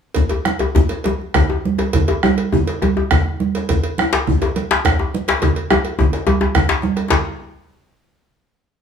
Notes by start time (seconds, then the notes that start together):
0.14 bombo rim, bombo low, cowbell, djembe slap, high conga, djembe bass, low conga
0.29 cowbell, djembe tone
0.45 bombo rim, djembe tone, high conga
0.59 bombo rim, cowbell, djembe slap, djembe tone
0.75 bombo low, djembe tone, djembe bass, low conga
0.89 cowbell, djembe slap, high conga
1.04 bombo rim, cowbell, djembe tone, high conga
1.21 high conga
1.34 bombo rim, bombo low, cowbell, djembe tone, low conga, djembe bass
1.50 djembe tone, high conga
1.65 high conga
1.78 cowbell, djembe slap, djembe tone
1.93 bombo rim, bombo low, cowbell, djembe slap, high conga, djembe bass, low conga
2.08 cowbell, djembe tone
2.23 bombo rim, high conga, djembe tone
2.38 bombo rim, cowbell
2.52 bombo low, djembe tone, djembe bass, low conga
2.67 cowbell, djembe slap, high conga
2.82 bombo rim, cowbell, djembe tone, high conga
2.97 djembe tone, high conga
3.11 bombo rim, bombo low, cowbell, djembe tone, low conga, djembe bass
3.26 high conga
3.40 high conga
3.55 cowbell, djembe slap
3.69 bombo rim, bombo low, cowbell, djembe slap, high conga, low conga, djembe bass
3.84 cowbell
3.98 bombo rim, high conga, djembe tone
4.13 cowbell, djembe slap
4.15 djembe slap
4.27 bombo low, low conga, djembe bass
4.42 cowbell, djembe slap, djembe tone, high conga
4.56 bombo rim, cowbell, high conga
4.71 djembe slap, high conga
4.85 bombo rim, bombo low, cowbell, djembe tone, low conga, djembe bass
4.99 djembe tone, high conga
5.14 high conga
5.28 cowbell, djembe slap
5.42 bombo low, cowbell, djembe slap, djembe tone, high conga, djembe bass, low conga
5.56 cowbell, djembe slap, high conga
5.70 bombo rim, djembe tone, high conga
5.85 cowbell
5.99 bombo low, djembe slap, djembe tone, high conga, djembe bass, low conga
6.13 bombo rim, cowbell, djembe slap
6.27 bombo rim, cowbell, djembe tone, high conga
6.41 bombo rim, djembe slap, djembe tone
6.55 bombo rim, bombo low, cowbell, djembe tone, djembe bass, low conga
6.69 djembe slap, djembe bass
6.82 djembe slap, high conga
6.96 bombo rim, cowbell, djembe slap
7.10 bombo low, cowbell, djembe slap, djembe bass, low conga